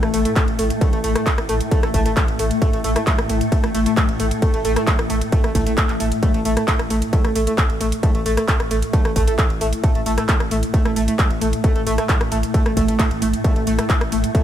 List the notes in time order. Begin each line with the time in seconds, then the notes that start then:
Already playing: A2 A3
0.03 A1 A3, cross-stick, ride
0.14 A1 A3, open hi-hat, ride
0.25 A3, closed hi-hat, ride
0.36 A3, kick, clap, closed hi-hat, ride
0.48 A1, ride
0.59 A1 A3, open hi-hat, ride
0.70 closed hi-hat, ride
0.81 A3, kick, closed hi-hat, ride
0.93 A1 A3, ride
1.04 A1 A3, open hi-hat, ride
1.15 A3, cross-stick, closed hi-hat, ride
1.26 A3, kick, clap, closed hi-hat, ride
1.38 A1, cross-stick, ride
1.49 A1 A3, open hi-hat, ride
1.61 closed hi-hat, ride
1.71 A3, kick, closed hi-hat, ride
1.83 A1 A3, cross-stick, ride
1.94 A1 A3, kick, open hi-hat, ride
2.06 A3, closed hi-hat, ride
2.17 A3, kick, clap, closed hi-hat, ride
2.28 A1, ride
2.39 A1 A3, open hi-hat, ride
2.51 closed hi-hat, ride
2.62 A3, kick, closed hi-hat, ride
2.73 A1 A3, ride
2.84 A1 A3, open hi-hat, ride
2.96 A3, cross-stick, closed hi-hat, ride
3.07 A3, kick, clap, closed hi-hat, ride
3.18 A1, cross-stick, ride
3.29 A1 A3, open hi-hat, ride
3.41 closed hi-hat, ride
3.52 A3, kick, closed hi-hat, ride
3.64 A1 A3, cross-stick, ride
3.75 A1 A3, open hi-hat, ride
3.86 A3, closed hi-hat, ride
3.97 A3, kick, clap, closed hi-hat, ride
4.09 A1, ride
4.20 A1 A3, open hi-hat, ride
4.31 closed hi-hat, ride
4.42 A3, kick, closed hi-hat, ride
4.54 A1 A3, ride
4.65 A1 A3, open hi-hat, ride
4.76 A3, cross-stick, closed hi-hat, ride
4.87 A3, kick, clap, closed hi-hat, ride
4.99 A1, cross-stick, ride
5.10 A1 A3, open hi-hat, ride
5.21 closed hi-hat, ride
5.32 A3, kick, closed hi-hat, ride
5.44 A1 A3, cross-stick, ride
5.55 A1 A3, kick, open hi-hat, ride
5.67 A3, closed hi-hat, ride
5.78 A3, kick, clap, closed hi-hat, ride
5.89 A1, clap, ride
6.00 A1 A3, open hi-hat, ride
6.12 closed hi-hat, ride
6.23 A3, kick, closed hi-hat, ride
6.34 A1 A3, ride
6.45 A1 A3, open hi-hat, ride
6.57 A3, cross-stick, closed hi-hat, ride
6.68 A3, kick, clap, closed hi-hat, ride
6.79 A1, cross-stick, ride
6.90 A1 A3, open hi-hat, ride
7.02 closed hi-hat, ride
7.13 A2 A3, kick, closed hi-hat, ride
7.25 A1 A3, cross-stick, ride
7.35 A1 A3, open hi-hat, ride
7.47 A3, closed hi-hat, ride
7.58 A3, kick, clap, closed hi-hat, ride
7.70 A1, ride
7.81 A1 A3, open hi-hat, ride
7.92 closed hi-hat, ride
8.03 A3, kick, closed hi-hat, ride
8.15 A1 A3, ride
8.26 A1 A3, open hi-hat, ride
8.37 A3, cross-stick, closed hi-hat, ride
8.48 A3, kick, clap, closed hi-hat, ride
8.60 A1, cross-stick, ride
8.71 A1 A3, open hi-hat, ride
8.82 closed hi-hat, ride
8.93 A3, kick, closed hi-hat, ride
9.05 A1 A3, cross-stick, ride
9.16 A1 A3, kick, open hi-hat, ride
9.28 A3, closed hi-hat, ride
9.38 A3, kick, clap, closed hi-hat, ride
9.50 A1, ride
9.61 A1 A3, open hi-hat, ride
9.73 closed hi-hat, ride
9.84 A3, kick, closed hi-hat, ride
9.95 A1 A3, ride
10.06 A1 A3, open hi-hat, ride
10.18 A3, cross-stick, closed hi-hat, ride
10.29 A3, kick, clap, closed hi-hat, ride
10.40 A1, cross-stick, ride
10.51 A1 A3, open hi-hat, ride
10.63 closed hi-hat, ride
10.74 A3, kick, closed hi-hat, ride
10.85 A1 A3, cross-stick, ride
10.96 A1 A3, open hi-hat, ride
11.08 A3, closed hi-hat, ride
11.19 A3, kick, clap, closed hi-hat, ride
11.30 A1, ride
11.41 A1 A3, open hi-hat, ride
11.53 closed hi-hat, ride
11.64 A3, kick, closed hi-hat, ride
11.76 A1 A3, ride
11.87 A1 A3, open hi-hat, ride
11.98 A3, cross-stick, closed hi-hat, ride
12.09 A3, kick, clap, closed hi-hat, ride
12.21 A1, cross-stick, ride
12.32 A1 A3, open hi-hat, ride
12.43 closed hi-hat, ride
12.54 A3, kick, closed hi-hat, ride
12.66 A1 A3, cross-stick, ride
12.77 A1 A3, kick, open hi-hat, ride
12.88 A3, closed hi-hat, ride
12.99 A3, kick, clap, closed hi-hat, ride
13.11 A1, ride
13.22 A1 A3, open hi-hat, ride
13.34 closed hi-hat, ride
13.44 A3, kick, closed hi-hat, ride
13.56 A1 A3, ride
13.67 A1 A3, open hi-hat, ride
13.79 A3, cross-stick, closed hi-hat, ride
13.90 A3, kick, clap, closed hi-hat, ride
14.01 A1, cross-stick, ride
14.12 A1 A3, open hi-hat, ride
14.24 closed hi-hat, ride
14.35 A3, kick, closed hi-hat, ride